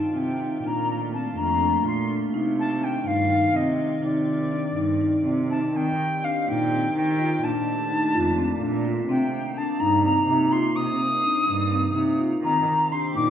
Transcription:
0.00 0.12 G2 medium
0.00 0.63 D#3 medium
0.00 0.63 C4 medium
0.00 3.99 F4 medium
0.00 0.18 A5 medium
0.15 0.61 C3 medium
0.15 0.32 C4 medium
0.15 0.68 G5 medium
0.39 0.56 D#4 soft
0.64 1.33 A#2 medium
0.64 2.32 A3 medium
0.64 2.32 A#3 medium
0.64 0.96 D4 medium
0.64 0.90 A#5 medium
0.90 0.96 A#5 medium
1.13 1.29 C4 medium
1.13 1.39 A5 medium
1.37 1.82 F2 medium
1.37 1.53 D4 medium
1.37 1.86 A#5 medium
1.61 1.77 D4 medium
1.85 2.31 A#2 medium
1.85 2.02 A#3 medium
1.85 2.20 C6 medium
2.09 2.26 D4 medium
2.34 3.02 C3 medium
2.34 5.72 D#3 medium
2.34 4.01 C4 medium
2.34 2.66 D#4 medium
2.59 2.85 A5 medium
2.82 2.98 D4 medium
2.82 3.08 G5 medium
3.06 3.51 G2 medium
3.06 3.22 D#4 medium
3.06 3.57 F5 medium
3.30 3.46 D#4 medium
3.54 4.00 C3 medium
3.54 3.71 C4 medium
3.54 4.03 D#5 medium
4.03 4.73 C3 medium
4.03 5.74 C4 medium
4.03 4.35 D#4 medium
4.03 5.74 D5 medium
4.03 5.22 D5 medium
4.52 4.68 D4 medium
4.76 5.22 G2 medium
4.76 4.93 D#4 medium
5.01 5.18 D#4 medium
5.25 5.72 C3 medium
5.25 5.42 C4 medium
5.50 5.67 D#4 medium
5.50 5.77 A5 medium
5.75 5.98 D#3 medium
5.75 7.42 D#3 medium
5.75 6.08 C4 medium
5.75 7.42 C4 medium
5.75 7.42 G4 medium
5.75 6.25 G5 medium
6.24 6.40 D4 medium
6.24 6.50 F5 medium
6.48 6.92 A#2 medium
6.48 6.64 D#4 medium
6.48 6.96 G5 medium
6.72 6.88 C4 medium
6.95 7.40 D#3 medium
6.95 7.12 D#4 medium
6.95 7.45 G5 medium
7.19 7.35 F4 medium
7.43 7.66 A#2 medium
7.43 9.08 A3 medium
7.43 12.40 A#3 medium
7.43 9.07 D4 medium
7.43 7.75 D4 medium
7.43 8.86 A5 medium
7.91 8.06 D#4 medium
8.14 8.59 F2 medium
8.14 8.30 F4 medium
8.38 8.54 C4 medium
8.61 9.06 A#2 medium
8.61 8.77 D4 medium
8.85 9.01 F4 medium
9.09 9.31 C3 medium
9.09 12.41 C3 medium
9.09 9.41 C4 medium
9.09 12.41 D#4 medium
9.09 9.59 G5 medium
9.57 9.73 D4 medium
9.57 9.81 A5 medium
9.80 10.25 G2 medium
9.80 9.96 D#4 medium
9.80 10.04 A#5 medium
10.04 10.20 C4 medium
10.04 10.53 A#5 medium
10.28 10.73 C3 medium
10.28 10.44 D#4 medium
10.52 10.68 F4 medium
10.52 10.77 C6 medium
10.76 10.99 C3 medium
10.76 11.08 C4 medium
10.76 12.20 D#6 loud
11.24 11.40 D4 medium
11.48 11.93 G2 medium
11.48 11.64 D#4 medium
11.71 11.88 C4 medium
11.95 12.41 C3 medium
11.95 12.12 D#4 medium
12.43 12.66 D#3 medium
12.43 13.30 D#3 medium
12.43 12.76 C4 medium
12.43 13.30 C4 medium
12.43 13.30 G4 medium
12.43 12.93 A#5 medium
12.92 13.08 D4 medium
12.92 13.14 C6 medium
13.15 13.30 A#2 medium
13.15 13.30 D#4 medium
13.15 13.30 D6 medium

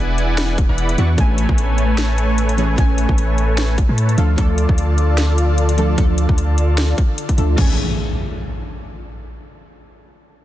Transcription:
0.00 0.67 E1 loud
0.00 0.95 E3 loud
0.00 1.15 E3 medium
0.00 0.96 B3 loud
0.00 1.15 B3 medium
0.00 0.96 D4 medium
0.00 1.15 D4 medium
0.00 0.56 E4 medium
0.00 0.97 G#4 loud
0.00 1.15 G#4 medium
0.00 0.56 B4 medium
0.00 0.56 D5 medium
0.00 0.56 F#5 medium
0.00 0.56 G#5 loud
0.18 closed hi-hat medium
0.38 snare loud
0.38 closed hi-hat medium
0.58 kick loud
0.58 closed hi-hat medium
0.69 0.96 E1 loud
0.69 0.96 E4 medium
0.69 0.96 B4 medium
0.69 0.96 D5 medium
0.69 0.96 F#5 medium
0.69 0.96 B5 medium
0.78 closed hi-hat medium
0.89 closed hi-hat medium
0.97 1.16 E2 loud
0.97 1.15 E3 loud
0.97 1.16 B3 medium
0.97 1.16 D4 medium
0.97 1.09 E4 medium
0.97 1.16 F#4 loud
0.97 1.09 B4 medium
0.97 1.09 D5 medium
0.97 1.09 F#5 medium
0.97 1.09 C#6 medium
0.97 closed hi-hat medium
1.16 1.47 A1 loud
1.16 2.55 E3 loud
1.16 2.56 A3 medium
1.16 1.46 A3 medium
1.16 4.15 A3 medium
1.16 4.15 C#4 medium
1.16 2.56 C#4 medium
1.16 1.46 A4 medium
1.16 1.46 B4 medium
1.16 1.46 C#5 medium
1.16 1.46 G#5 medium
1.16 kick loud
1.16 closed hi-hat medium
1.20 2.57 G#5 loud
1.38 closed hi-hat medium
1.49 2.76 A1 loud
1.49 2.76 A3 medium
1.49 2.76 A4 medium
1.49 2.76 B4 medium
1.49 2.76 C#5 medium
1.49 2.76 G#5 medium
1.49 kick medium
1.58 closed hi-hat medium
1.78 closed hi-hat medium
1.98 snare loud
1.98 closed hi-hat medium
2.18 closed hi-hat medium
2.38 closed hi-hat medium
2.49 closed hi-hat medium
2.57 2.75 E3 medium
2.57 2.76 A3 medium
2.57 2.76 C#4 medium
2.57 2.76 G#4 loud
2.57 closed hi-hat medium
2.76 3.07 A1 medium
2.76 4.15 E3 loud
2.76 4.16 A3 loud
2.76 3.06 A3 medium
2.76 4.16 C#4 loud
2.76 3.06 A4 medium
2.76 3.06 B4 medium
2.76 3.06 C#5 medium
2.76 3.06 G#5 loud
2.76 4.17 G#5 loud
2.76 kick loud
2.76 closed hi-hat medium
2.98 closed hi-hat medium
3.09 3.87 A1 loud
3.09 3.76 A3 medium
3.09 3.76 A4 medium
3.09 3.76 B4 medium
3.09 3.76 C#5 medium
3.09 3.76 G#5 loud
3.09 kick medium
3.18 closed hi-hat medium
3.38 closed hi-hat medium
3.58 snare loud
3.58 closed hi-hat medium
3.78 kick loud
3.78 closed hi-hat medium
3.89 4.16 A2 medium
3.89 4.16 A3 medium
3.89 4.16 A4 medium
3.89 4.16 B4 medium
3.89 4.16 C#5 medium
3.89 4.16 A5 medium
3.98 closed hi-hat medium
4.09 closed hi-hat medium
4.17 4.36 D2 loud
4.17 7.55 D3 medium
4.17 4.35 F3 medium
4.17 4.36 A3 medium
4.17 7.55 D4 medium
4.17 4.36 D4 medium
4.17 4.29 F4 medium
4.17 7.55 F4 medium
4.17 4.29 A4 medium
4.17 7.55 A4 medium
4.17 4.36 A4 loud
4.17 4.29 F5 medium
4.17 closed hi-hat medium
4.36 4.67 D2 medium
4.36 5.75 F3 loud
4.36 5.76 A3 medium
4.36 5.76 D4 loud
4.36 4.66 F4 medium
4.36 4.66 A4 medium
4.36 5.77 A4 loud
4.36 4.66 D5 medium
4.36 kick loud
4.36 closed hi-hat medium
4.58 closed hi-hat medium
4.69 5.96 D2 loud
4.69 5.96 F4 medium
4.69 5.96 A4 medium
4.69 5.96 D5 medium
4.69 kick medium
4.78 closed hi-hat medium
4.98 closed hi-hat medium
5.18 snare loud
5.18 closed hi-hat medium
5.38 closed hi-hat medium
5.58 closed hi-hat medium
5.69 closed hi-hat medium
5.77 5.95 F3 medium
5.77 5.96 A3 medium
5.77 5.96 D4 medium
5.77 5.96 A4 loud
5.77 closed hi-hat medium
5.96 6.27 D2 medium
5.96 7.35 F3 loud
5.96 7.36 A3 medium
5.96 7.36 D4 medium
5.96 6.26 F4 medium
5.96 6.26 A4 medium
5.96 7.37 A4 loud
5.96 6.26 D5 loud
5.96 kick loud
5.96 closed hi-hat medium
6.18 closed hi-hat medium
6.29 6.94 D2 loud
6.29 6.96 F4 medium
6.29 6.96 A4 medium
6.29 6.96 D5 loud
6.29 kick medium
6.38 closed hi-hat medium
6.58 closed hi-hat medium
6.78 snare loud
6.78 closed hi-hat medium
6.98 kick loud
6.98 closed hi-hat medium
7.18 closed hi-hat medium
7.29 kick medium
7.29 closed hi-hat medium
7.37 7.56 D2 loud
7.37 7.55 F3 medium
7.37 7.56 A3 medium
7.37 7.56 D4 medium
7.37 7.56 F4 loud
7.37 7.56 A4 loud
7.37 7.56 D5 loud
7.37 closed hi-hat medium
7.55 7.77 A1 loud
7.55 7.72 E3 medium
7.55 7.73 A3 medium
7.55 7.73 A4 medium
7.55 7.73 B4 medium
7.55 7.73 C#5 medium
7.55 7.73 G#5 medium
7.55 kick loud
7.55 crash medium
7.55 impact medium
7.59 7.74 C#4 medium
7.59 7.75 G#4 loud

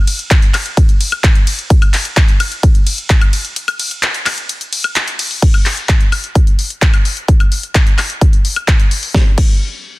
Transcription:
0.07 open hi-hat loud
0.07 ride medium
0.19 closed hi-hat soft
0.31 kick loud
0.31 clap loud
0.31 closed hi-hat medium
0.31 ride medium
0.42 closed hi-hat soft
0.54 clap medium
0.54 open hi-hat loud
0.54 ride medium
0.54 high woodblock medium
0.66 closed hi-hat soft
0.77 kick loud
0.77 closed hi-hat medium
0.77 ride medium
0.89 closed hi-hat soft
1.01 open hi-hat loud
1.01 ride medium
1.12 closed hi-hat soft
1.12 high woodblock medium
1.24 kick loud
1.24 clap loud
1.24 closed hi-hat medium
1.24 ride medium
1.35 closed hi-hat soft
1.47 open hi-hat loud
1.47 ride medium
1.59 closed hi-hat soft
1.70 kick loud
1.70 closed hi-hat medium
1.70 ride medium
1.82 closed hi-hat soft
1.82 high woodblock medium
1.94 clap medium
1.94 open hi-hat loud
1.94 ride medium
2.05 closed hi-hat soft
2.17 kick loud
2.17 clap loud
2.17 closed hi-hat medium
2.17 ride medium
2.28 closed hi-hat soft
2.40 open hi-hat loud
2.40 ride medium
2.40 high woodblock medium
2.52 closed hi-hat soft
2.63 kick loud
2.63 closed hi-hat medium
2.63 ride medium
2.75 closed hi-hat soft
2.87 open hi-hat loud
2.87 ride medium
2.98 closed hi-hat soft
3.10 kick loud
3.10 clap loud
3.10 closed hi-hat medium
3.10 ride medium
3.21 closed hi-hat soft
3.21 high woodblock medium
3.33 open hi-hat loud
3.33 ride medium
3.45 closed hi-hat soft
3.56 closed hi-hat medium
3.56 ride medium
3.68 closed hi-hat soft
3.68 high woodblock medium
3.80 open hi-hat loud
3.80 ride medium
3.91 closed hi-hat soft
4.03 clap loud
4.03 closed hi-hat medium
4.03 ride medium
4.14 closed hi-hat soft
4.26 clap medium
4.26 open hi-hat loud
4.26 ride medium
4.26 high woodblock medium
4.38 closed hi-hat soft
4.49 closed hi-hat medium
4.49 ride medium
4.61 closed hi-hat soft
4.73 open hi-hat loud
4.73 ride medium
4.84 closed hi-hat soft
4.84 high woodblock medium
4.96 clap loud
4.96 closed hi-hat medium
4.96 ride medium
5.08 closed hi-hat soft
5.19 open hi-hat loud
5.19 ride medium
5.31 open hi-hat medium
5.42 kick loud
5.42 closed hi-hat medium
5.42 crash loud
5.54 closed hi-hat soft
5.54 high woodblock medium
5.66 clap medium
5.66 open hi-hat loud
5.77 closed hi-hat soft
5.89 kick loud
5.89 clap loud
5.89 closed hi-hat medium
6.01 closed hi-hat soft
6.12 open hi-hat loud
6.12 high woodblock medium
6.24 closed hi-hat soft
6.35 kick loud
6.35 closed hi-hat medium
6.47 closed hi-hat soft
6.59 open hi-hat loud
6.70 closed hi-hat soft
6.82 kick loud
6.82 clap loud
6.82 closed hi-hat medium
6.94 closed hi-hat soft
6.94 high woodblock medium
7.05 open hi-hat loud
7.17 closed hi-hat soft
7.28 kick loud
7.28 closed hi-hat medium
7.40 closed hi-hat soft
7.40 high woodblock medium
7.52 open hi-hat loud
7.63 closed hi-hat soft
7.75 kick loud
7.75 clap loud
7.75 closed hi-hat medium
7.87 closed hi-hat soft
7.98 clap medium
7.98 open hi-hat loud
7.98 high woodblock medium
8.10 closed hi-hat soft
8.21 kick loud
8.21 closed hi-hat medium
8.33 closed hi-hat soft
8.45 open hi-hat loud
8.56 closed hi-hat soft
8.56 high woodblock medium
8.68 kick loud
8.68 clap loud
8.68 closed hi-hat medium
8.80 closed hi-hat soft
8.91 open hi-hat loud
9.03 open hi-hat medium
9.14 kick loud
9.14 snare medium
9.38 kick loud
9.38 crash medium

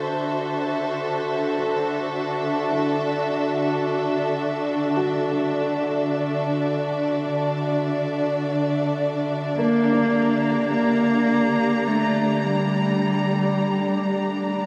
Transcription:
0.00 14.66 D3 medium
0.00 14.66 D4 medium
0.00 9.59 F#4 medium
0.00 9.59 A4 medium
0.00 2.77 C5 medium
0.00 11.33 E5 medium
1.57 2.77 A4 medium
2.42 14.66 D5 medium
2.71 3.90 E4 medium
4.97 6.18 F#4 medium
5.31 6.49 A4 soft
9.57 10.70 A#3 medium
9.57 10.81 A#3 soft
9.84 14.66 A#5 medium
9.90 11.12 D4 soft
9.90 14.66 G4 medium
10.73 11.89 A#3 medium
11.88 12.47 A3 medium
12.45 14.66 G3 medium

